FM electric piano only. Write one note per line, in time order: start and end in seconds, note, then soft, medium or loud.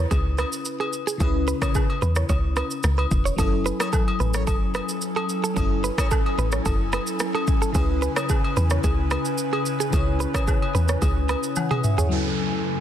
0.00 1.15 C#3 medium
0.00 1.16 C#4 medium
0.00 1.17 E4 medium
0.00 1.18 B4 medium
1.18 3.33 C#3 medium
1.18 3.34 C#4 medium
1.18 3.35 E4 medium
1.23 3.36 B4 medium
3.36 5.52 F#3 medium
3.36 5.52 C#4 medium
3.36 5.53 E4 medium
3.41 5.54 A4 medium
5.54 7.70 F#3 medium
5.54 7.70 C#4 medium
5.54 7.71 E4 medium
5.59 7.72 A4 medium
7.73 9.88 C#3 medium
7.73 9.89 C#4 medium
7.73 9.90 E4 medium
7.77 9.90 B4 medium
9.90 11.79 C#3 medium
9.90 11.80 C#4 medium
9.90 11.81 E4 medium
9.95 11.55 C#5 medium
11.57 11.83 F#5 medium
11.84 11.97 E5 medium
11.98 12.24 C#5 medium
12.09 12.80 F#3 medium
12.09 12.80 C#4 medium
12.09 12.80 E4 medium
12.14 12.80 A4 medium